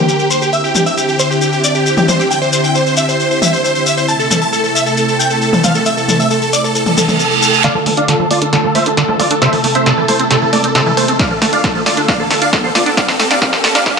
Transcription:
Already playing: D3 A#3 G4 A#4
0.08 G4, shekere
0.19 G4, shekere
0.30 C5, shekere
0.42 G4, shekere
0.53 D3 C4 E4 E5, shekere
0.64 G4, shekere
0.75 G4, mid tom, shekere
0.86 E5, shekere
0.97 G4, shekere
1.08 G4, shekere
1.19 C5, shekere
1.30 G4, shekere
1.41 G4, shekere
1.52 G4, shekere
1.64 D5, shekere
1.75 G4, shekere
1.86 G4, shekere
1.97 G4, mid tom, shekere
2.08 C5, mid tom, shekere
2.19 G4, shekere
2.31 G5, shekere
2.42 C5, shekere
2.53 C5, shekere
2.64 G5, shekere
2.75 C5, shekere
2.86 C5, shekere
2.97 E5, shekere
3.09 C5, shekere
3.20 C5, shekere
3.31 C5, shekere
3.42 E5, mid tom, shekere
3.53 C5, shekere
3.64 C5, shekere
3.75 C5, shekere
3.86 E5, shekere
3.97 C5, shekere
4.08 C3 A3 A4 A5, shekere
4.19 A4, shekere
4.30 A4, mid tom, shekere
4.42 A5, shekere
4.53 A4, shekere
4.64 A4, shekere
4.75 E5, shekere
4.86 A4, shekere
4.97 A4, shekere
5.08 A4, shekere
5.19 G5, shekere
5.30 A4, shekere
5.42 A4, shekere
5.53 A4, mid tom, shekere
5.64 F5, mid tom, shekere
5.75 A4, shekere
5.86 E5, shekere
5.97 A4, shekere
6.08 A4, mid tom, shekere
6.20 E5, shekere
6.30 A4, shekere
6.41 A4, shekere
6.53 D5, shekere
6.64 A4, shekere
6.75 A4, reverse cymbal, shekere
6.86 A4, mid tom, shekere
6.97 A4, mid tom, shekere
7.08 A4, mid tom, shekere
7.19 A4, shekere
7.31 A4, shekere
7.42 A4, shekere
7.53 A4, shekere
7.64 D3 A3 F4 A4 D5 F5, snare, closed hi-hat, riser
7.75 F3 A4
7.86 A3 A4, open hi-hat, mid tom
7.97 D4 D5 F5, closed hi-hat
8.08 D3 A4, snare, closed hi-hat
8.20 F3 A4
8.31 A3 F4 D5, open hi-hat
8.42 D4 A4, closed hi-hat
8.53 D3 A4, snare, closed hi-hat
8.64 F3 A4
8.75 A3 C5 E5, open hi-hat
8.86 D4 A4, closed hi-hat
8.97 D3 A4, snare, closed hi-hat
9.08 F3 A4, mid tom
9.19 A3 F4 D5, open hi-hat, mid tom
9.31 D4 A4, closed hi-hat
9.42 C3 E4 C5 E5, snare, closed hi-hat
9.53 E3 A4, open hi-hat
9.64 A3 A4, open hi-hat
9.75 C4 C5 E5, closed hi-hat
9.86 C3 A4, snare, closed hi-hat
9.97 E3 A4
10.08 A3 A4 C5, open hi-hat
10.19 C4 A4, closed hi-hat
10.31 C3 A4, snare, closed hi-hat
10.42 E3 A4
10.53 A3 A4 D5, open hi-hat, mid tom
10.64 C4 A4, closed hi-hat
10.75 C3 A4, snare, closed hi-hat
10.86 E3 A4
10.97 A3 A4 C5, open hi-hat
11.08 C4 A4, closed hi-hat
11.19 D3 A3 F4 D5 F5, kick, snare, closed hi-hat
11.31 F3 A4
11.42 A3 A4, snare, open hi-hat, mid tom
11.53 D4 D5 F5, closed hi-hat
11.64 D3 A4, kick, snare, closed hi-hat
11.75 F3 A4
11.86 A3 F4 D5, snare, open hi-hat
11.97 D4 A4, closed hi-hat
12.08 D3 D5 F5, kick, snare, closed hi-hat
12.19 F3 A4
12.31 A3 A4, snare, open hi-hat
12.42 D4 D5 F5, closed hi-hat
12.53 D3 A4, kick, snare, closed hi-hat
12.64 F3 A4, mid tom
12.75 A3 F4 D5, snare, open hi-hat, mid tom
12.86 D4 A4, closed hi-hat
12.97 D3 A#3 G4 A#4 D5 F5, kick, snare, closed hi-hat
13.08 F3 A4, snare, open hi-hat
13.19 A3 A4, snare, open hi-hat
13.30 D4 D5 F5, snare, closed hi-hat
13.42 D3 D5 F5, kick, snare, closed hi-hat
13.53 F3 A4, snare
13.64 A3 A4, snare, open hi-hat
13.75 D4 D5 F5, snare, closed hi-hat
13.86 D3 D5 F5, kick, snare, closed hi-hat

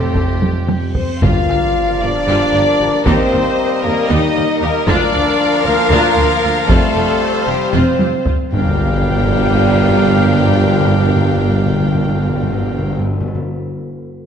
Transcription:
Already playing: F1 F2 A2 A3 C4 F4 G4 A4 C5, reverse cymbal
0.15 taiko
0.42 taiko high
0.69 taiko high
0.94 C4 C5, taiko low
1.22 G1 G2 F3 A#3 F4 G4 A#4 D5 F5, taiko, sub drop
1.48 G1 G2 G4 A#4, taiko rim
2.01 G1 G2 D4 G4 A#4 D5
2.27 G1 G2 F4 G4
2.53 G1 G2 G4 A#4
2.80 G1 G2 G4
3.04 D#2 G3 C4 D#4 G4 C5 D#5, taiko
3.32 D#2 G4 A#4, taiko rim
3.82 D#2 A#3 G4 A#4
4.09 D#2 D#4 G4 D#5
4.35 D#2 G4 A#4
4.61 D#2 A#3 G4 A#4
4.86 D2 D3 F3 A#3 D4 F4 A#4 D5 F5, taiko
5.12 D2 F4 A#4
5.63 D2 A#3 F4 A#4
5.90 D2 D4 F4
6.16 D2 F4 A#4
6.42 D2 F4
6.68 F1 F2 G3 A3 C4 F4 A4 C5, taiko
6.94 F1 F2 F4 G4
7.46 F1 F2 G3 F4 G4
7.73 F1 F2 C4 F4 C5, taiko mid
7.99 F1 F2 F4 G4, taiko high
8.25 F1 F2 F4, taiko low
8.52 G1 G2 F3 G3 A#3 D4 G4 A#4 F5 G5, sub drop
8.61 G2
8.68 G2
8.75 G2
8.81 G2
8.88 G2
8.96 G2
9.03 G2
9.10 G2
9.18 G2
9.25 G2
9.32 G2
9.39 G2
9.46 G2
9.53 G2
9.60 G2
9.68 G2
9.74 G2
9.82 G2
9.90 G2
9.97 G2
10.05 G2
10.11 G2
10.18 G2
10.26 G2
10.33 G2
10.40 G2
10.47 G2
10.54 G2
10.61 G2
10.67 G2
10.74 G2
10.80 G2
10.87 G2
10.95 G2
11.02 G2
11.09 G2
11.16 G2
11.23 G2
11.30 G2
11.37 G2
11.44 G2
11.52 G2
11.59 G2
11.66 G2
11.73 G2
11.80 G2
11.87 G2
11.95 G2
12.01 G2
12.08 G2
12.15 G2
12.22 G2
12.29 G2
12.36 G2
12.43 G2
12.50 G2
12.57 G2
12.64 G2
12.71 G2
12.78 G2
12.85 G2
12.92 G2
12.99 G2
13.06 G2
13.13 G2
13.20 G2
13.28 G2
13.35 G2

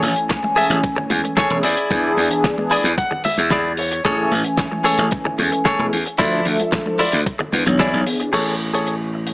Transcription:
Already playing: E3 A3 C#4 G#5
0.03 A1, open hi-hat, shaker
0.16 closed hi-hat, shaker
0.29 muted clean electric guitar stroke, kick, snare, closed hi-hat, shaker
0.42 E3 A3 C#4 G#5, muted clean electric guitar stroke, high conga, shaker
0.56 G#4 A4 E5, open hi-hat, shaker
0.70 A1, closed hi-hat, shaker
0.83 kick, closed hi-hat, shaker
0.96 muted clean electric guitar stroke, low conga, shaker
1.10 E2, muted clean electric guitar stroke, open hi-hat, high conga, low conga, shaker
1.24 muted clean electric guitar stroke, closed hi-hat, shaker
1.37 G#4 A4 C#5, kick, snare, closed hi-hat, shaker
1.50 E1 E3 A3 C#4 G#4, shaker
1.63 E2 E4 G#4 D5, open hi-hat, shaker
1.77 closed hi-hat, shaker
1.89 E2 E3 B3 D4 G#4, kick, closed hi-hat, shaker
2.05 shaker
2.17 E2, open hi-hat, shaker
2.31 closed hi-hat, shaker
2.44 muted clean electric guitar stroke, kick, snare, closed hi-hat, shaker
2.57 E3 B3 D4 G#4, muted clean electric guitar stroke, high conga, shaker
2.71 E4 G#4 D5 G#5, muted slap bass stroke, open hi-hat, shaker
2.84 E2, closed hi-hat, shaker
2.98 F#5, kick, closed hi-hat, shaker
3.11 muted clean electric guitar stroke, low conga, shaker
3.24 E5, muted clean electric guitar stroke, open hi-hat, high conga, low conga, shaker
3.38 E2, muted clean electric guitar stroke, closed hi-hat, shaker
3.50 E4 G#4 D5, kick, snare, closed hi-hat, shaker
3.65 shaker
3.77 C#5, open hi-hat, shaker
3.91 muted clean electric guitar stroke, closed hi-hat, shaker
4.04 A1 E3 A3 C#4 G#4 A4 C#5 G#5, kick, closed hi-hat, shaker
4.18 shaker
4.31 A1, open hi-hat, shaker
4.44 closed hi-hat, shaker
4.57 muted clean electric guitar stroke, kick, snare, closed hi-hat, shaker
4.71 E3 A3 C#4 G#5, muted clean electric guitar stroke, high conga, shaker
4.84 G#4 A4 C#5, open hi-hat, shaker
4.98 A1, closed hi-hat, shaker
5.11 kick, closed hi-hat, shaker
5.25 muted clean electric guitar stroke, low conga, shaker
5.38 E2, muted clean electric guitar stroke, open hi-hat, high conga, low conga, shaker
5.52 muted clean electric guitar stroke, closed hi-hat, shaker
5.65 G#4 A4 C#5, kick, snare, closed hi-hat, shaker
5.78 E1 E3 A3 C#4 G#4, shaker
5.92 E2, open hi-hat, shaker
6.06 muted clean electric guitar stroke, closed hi-hat, shaker
6.18 D2 F3 D4 E4 F4 A4 D5 E5, kick, closed hi-hat, shaker
6.34 shaker
6.45 D2, open hi-hat, shaker
6.59 closed hi-hat, high conga, shaker
6.72 muted clean electric guitar stroke, kick, snare, closed hi-hat, shaker
6.86 F3 D4 E4 A4, muted clean electric guitar stroke, high conga, shaker
6.99 E4 F4 D5, muted slap bass stroke, open hi-hat, shaker
7.12 D2, closed hi-hat, shaker
7.26 kick, closed hi-hat, shaker
7.39 muted clean electric guitar stroke, low conga, shaker
7.52 E2 E3 B3 D4 B4, muted clean electric guitar stroke, open hi-hat, high conga, low conga, shaker
7.66 B1 E3 B3 D4 C#5, muted clean electric guitar stroke, closed hi-hat, shaker
7.79 E4 G#4 D5, kick, snare, closed hi-hat, shaker
7.93 B1 E3 B3 D4 C#5, shaker
8.06 E3 B3 D4 G#4, open hi-hat, shaker
8.20 muted clean electric guitar stroke, closed hi-hat, shaker
8.32 A1 E3 G#4 A4 C#5, closed hi-hat, crash
8.73 G#4 A4 C#5, closed hi-hat
8.87 closed hi-hat
9.14 muted clean electric guitar stroke
9.27 closed hi-hat

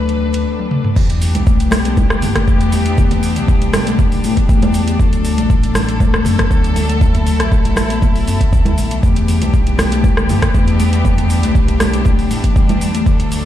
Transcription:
Already playing: D2 F#3 A3 D4 B4
0.09 closed hi-hat
0.34 closed hi-hat
0.59 high tom
0.71 mid tom
0.84 mid tom
0.96 E2 E3 B3 D4 G4, kick, crash, shaker
1.10 closed hi-hat, shaker
1.22 open hi-hat, shaker
1.35 B1, closed hi-hat, high conga, shaker
1.47 A3, kick, shaker
1.60 closed hi-hat, shaker
1.71 cross-stick, open hi-hat, high conga, shaker
1.85 B3, closed hi-hat, shaker
1.97 G3, kick, high conga, shaker
2.10 cross-stick, shaker
2.22 G2 D3, open hi-hat, low conga, shaker
2.36 A3, kick, cross-stick, closed hi-hat, low conga, shaker
2.48 E2 E3, kick, shaker
2.61 closed hi-hat, shaker
2.72 open hi-hat, high conga, shaker
2.86 closed hi-hat, shaker
2.98 A3, kick, low conga, shaker
3.11 closed hi-hat, low conga, shaker
3.23 open hi-hat, shaker
3.36 B1 B3, closed hi-hat, shaker
3.48 G3, kick, shaker
3.61 closed hi-hat, high conga, shaker
3.73 D3, cross-stick, open hi-hat, high conga, shaker
3.87 A3, closed hi-hat, shaker
3.99 E3, kick, low conga, shaker
4.12 open hi-hat, shaker
4.24 A2, open hi-hat, shaker
4.37 E2, kick, closed hi-hat, shaker
4.49 A3, kick, shaker
4.62 closed hi-hat, high conga, shaker
4.74 open hi-hat, shaker
4.88 B3, closed hi-hat, shaker
4.99 D2 F#3 A3 A4, kick, shaker
5.13 closed hi-hat, shaker
5.25 D3, open hi-hat, shaker
5.37 A1 A3, closed hi-hat, high conga, shaker
5.50 E3, kick, shaker
5.63 closed hi-hat, shaker
5.75 cross-stick, open hi-hat, high conga, shaker
5.89 closed hi-hat, shaker
6.00 A3, kick, high conga, shaker
6.14 cross-stick, shaker
6.25 F#2, open hi-hat, low conga, shaker
6.39 B3, kick, cross-stick, closed hi-hat, low conga, shaker
6.51 D2 F#3, kick, shaker
6.64 closed hi-hat, shaker
6.76 D3, open hi-hat, high conga, shaker
6.89 A3, closed hi-hat, shaker
7.01 E3 E4, kick, low conga, shaker
7.15 closed hi-hat, low conga, shaker
7.27 open hi-hat, shaker
7.40 A1, cross-stick, closed hi-hat, shaker
7.52 A3, kick, shaker
7.65 closed hi-hat, high conga, shaker
7.76 cross-stick, open hi-hat, high conga, shaker
7.90 B3, closed hi-hat, shaker
8.02 F#3, kick, low conga, shaker
8.16 open hi-hat, shaker
8.27 F#2 B3, open hi-hat, shaker
8.41 D2 D3, kick, closed hi-hat, shaker
8.52 E3, kick, shaker
8.65 closed hi-hat, high conga, shaker
8.78 A1, open hi-hat, shaker
8.91 B1 D3, closed hi-hat, shaker
9.03 E2 E3 A3 B3 D4 G4, kick, shaker
9.16 closed hi-hat, shaker
9.28 open hi-hat, shaker
9.41 B1 E3, closed hi-hat, high conga, shaker
9.53 G3, kick, shaker
9.67 closed hi-hat, shaker
9.79 D3, cross-stick, open hi-hat, high conga, shaker
9.92 A3, closed hi-hat, shaker
10.04 E3, kick, high conga, shaker
10.17 cross-stick, shaker
10.29 G2, open hi-hat, low conga, shaker
10.42 kick, cross-stick, closed hi-hat, low conga, shaker
10.54 E2 A3, kick, shaker
10.68 closed hi-hat, shaker
10.80 open hi-hat, high conga, shaker
10.93 E3, closed hi-hat, shaker
11.05 G3, kick, low conga, shaker
11.18 closed hi-hat, low conga, shaker
11.30 D3, open hi-hat, shaker
11.43 B1 A3, closed hi-hat, shaker
11.55 E3, kick, shaker
11.68 closed hi-hat, high conga, shaker
11.80 cross-stick, open hi-hat, high conga, shaker
11.94 closed hi-hat, shaker
12.05 A3, kick, low conga, shaker
12.19 open hi-hat, shaker
12.30 A2, open hi-hat, shaker
12.44 E2 E3, kick, closed hi-hat, shaker
12.56 G3, kick, shaker
12.69 closed hi-hat, high conga, shaker
12.81 D3, open hi-hat, shaker
12.94 A3, closed hi-hat, shaker
13.06 D2 E3 F#3 A3 A4, kick, shaker
13.20 closed hi-hat, shaker
13.32 open hi-hat, shaker

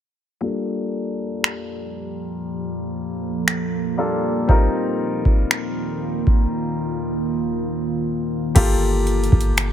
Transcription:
0.41 F3 G3 A#3 D4 F4 G4 A4
1.44 finger snap
2.45 A4
3.48 finger snap
3.97 G3 A#3 D4 F4 A4
4.47 D#3 G3 C4 D#4 F4 A#4, kick
5.25 kick
5.51 finger snap
6.27 kick
8.55 G1 A#2 F3 A#3 F4 G4 A4, kick, closed hi-hat, crash
9.07 closed hi-hat
9.24 closed hi-hat
9.32 G1, kick
9.41 closed hi-hat
9.57 finger snap, closed hi-hat

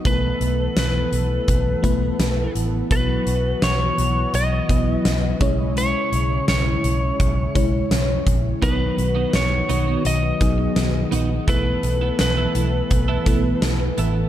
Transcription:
Already playing: D#5
0.05 B1 E3 A3 B3 E4 A#4 B4, kick, closed hi-hat
0.12 B4
0.41 B1, closed hi-hat
0.76 B1 B4, snare, closed hi-hat
1.12 B1, closed hi-hat
1.48 B1, kick, closed hi-hat
1.83 B1 A3 B3 E4 B4, kick, closed hi-hat
2.19 B1, snare, closed hi-hat
2.55 A1, closed hi-hat
2.91 B1 E3 F#3 B3 E4 F#4 B4, kick, closed hi-hat
3.26 B1, closed hi-hat
3.62 B1 C#5, snare, closed hi-hat
3.98 B1, closed hi-hat
4.33 B1 D#5, closed hi-hat
4.69 B1 F#3 B3 E4 B4, kick, closed hi-hat
5.05 B1, snare, closed hi-hat
5.40 B1 C#3 G#3 C#4 E4 C#5, kick, closed hi-hat
5.77 C#5, closed hi-hat
6.12 B1, closed hi-hat
6.48 B1 C#5, snare, closed hi-hat
6.84 B1, closed hi-hat
7.20 B1, kick, closed hi-hat
7.55 B1 G#3 C#4 E4 C#5, kick, closed hi-hat
7.91 B1, snare, closed hi-hat
8.27 A#1, kick, closed hi-hat
8.62 B1 F#3 B3 D#4 F#4 B4, kick, closed hi-hat
8.80 muted clean electric guitar stroke
8.97 B1, muted clean electric guitar stroke, closed hi-hat
9.15 B3 D#4 F#4
9.33 B1 C#5, muted clean electric guitar stroke, snare, closed hi-hat
9.51 muted clean electric guitar stroke
9.69 B1 B3 D#4 F#4, closed hi-hat
9.87 B3 D#4 F#4
10.05 B1 D#5, muted clean electric guitar stroke, closed hi-hat
10.23 muted clean electric guitar stroke
10.41 B1 F#3 B3 D#4 G#4, kick, closed hi-hat
10.58 muted clean electric guitar stroke
10.76 B1, snare, closed hi-hat
10.94 muted clean electric guitar stroke
11.11 A#1 B3 D#4 F#4, closed hi-hat
11.29 muted clean electric guitar stroke
11.47 B1 E3 A3 B3 E4 A4 B4, kick, closed hi-hat
11.66 muted clean electric guitar stroke
11.83 B1, muted clean electric guitar stroke, closed hi-hat
12.01 B3 E4 A4
12.19 B1 B4, muted clean electric guitar stroke, snare, closed hi-hat
12.37 B3 E4 A4
12.55 B1 B3 E4 A4, closed hi-hat
12.73 muted clean electric guitar stroke
12.90 B1, muted clean electric guitar stroke, kick, closed hi-hat
13.08 B3 E4 A4
13.26 B1 A3 B3 E4 A4 B4, kick, closed hi-hat
13.44 muted clean electric guitar stroke
13.62 B1, snare, closed hi-hat
13.80 muted clean electric guitar stroke
13.98 A1 B3 E4 A4, closed hi-hat
14.16 muted clean electric guitar stroke

